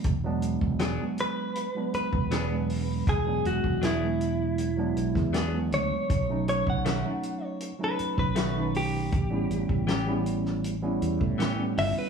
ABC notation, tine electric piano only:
X:1
M:4/4
L:1/16
Q:1/4=79
K:Emix
V:1 name="Tine electric piano"
z [F,G,B,D]3 z [F,G,B,D]3 z [F,G,B,D]3 z [F,G,B,D]3 | z [F,G,B,D]3 z [F,G,B,D]3 z [F,G,B,D]3 z [F,G,B,D]3 | z [F,A,C^D]3 z [F,A,CD]3 z [F,A,CD]3 z [^D,A,CD]3 | z [=G,B,CE]3 z [G,B,CE]3 z [G,B,CE]3 z [G,B,CE]3 |]